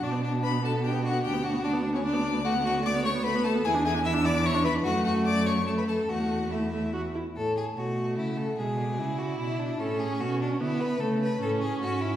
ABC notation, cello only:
X:1
M:3/4
L:1/8
Q:1/4=148
K:Bm
V:1 name="Cello" clef=bass
B,,6 | D,,6- | [K:A] D,,6 | E,,6 |
F,,6 | E,,4- E,, z | A,,2 B,,2 C,2 | B,,2 C,2 B,,2 |
A,,2 B,,2 D,2 | C,2 A,,2 G,,2 |]